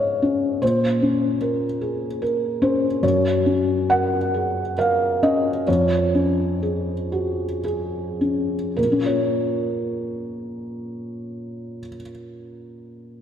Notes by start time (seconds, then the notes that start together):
Already playing: G#2 C#4 C5 C#5 D#5 F5
0.22 C#4
0.62 A#2 C5
1.02 C#4
1.41 A#4
1.81 G#4
2.22 A#4
2.62 C#4 C5
3.03 F#2 C#5
3.46 C#4
3.90 A#4 F#5
4.34 G#4
4.78 A#4 F5
5.23 C#4 D#5
5.67 F2 C#5
6.15 C#4
6.63 G#4
7.12 F#4
7.64 G#4
8.21 C#4
8.76 A#2 A#4
8.85 A#3
8.92 C#4
8.99 F4
9.06 C#5